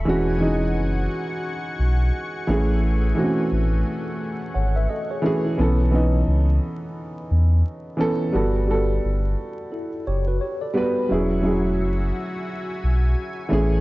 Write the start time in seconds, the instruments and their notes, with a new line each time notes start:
0.05 sub bass E1, upright piano E3 G#3 C#4, analog synth pad F#4 F#5 G#5 C#6
0.09 upright piano F#4
0.38 upright piano E3 G#3 C#4 D#4
0.76 sub bass F#1
1.79 sub bass B1
2.47 sub bass A1, upright piano E3 A3 C#4 G#4, analog synth pad A3
3.15 upright piano E3 A3 C4 F#4
3.24 upright piano C#4
3.52 sub bass A1
4.54 sub bass G#1, tine electric piano C#5 F#5
4.76 tine electric piano B4 E5
4.89 tine electric piano A4 D#5
5.11 tine electric piano G#4 C#5
5.22 upright piano E3 A3 C#4, tine electric piano F#4 B4
5.26 upright piano G#4
5.45 tine electric piano E4 A4
5.57 sub bass B1, upright piano E3 B3 C#4 A4
5.91 upright piano E3 B3 C#4
5.95 upright piano D#4
6.27 sub bass C#2
7.31 sub bass E2
7.97 upright piano E3 B3 C#4 A4
8.32 sub bass G1, upright piano G3 B3 F#4 A4
8.67 upright piano G3 B3 F#4 A4
9.04 sub bass G1
9.72 tine electric piano E4 A4
10.07 sub bass F#1, tine electric piano G4 C#5
10.27 tine electric piano F#4 B4
10.41 tine electric piano G4 C#5
10.61 tine electric piano A4 D5
10.73 upright piano G3 B3 F#4 B4
11.09 sub bass E1, upright piano F#3 C#4 E4 G#4, analog synth pad F#4 E5 G#5 C#6
11.42 upright piano F#3 C#4 E4
11.46 upright piano G#4
11.81 sub bass F#1
12.84 sub bass B1
13.49 sub bass A1, upright piano E3 A3 C#4, analog synth pad A3 C#5
13.53 upright piano G#4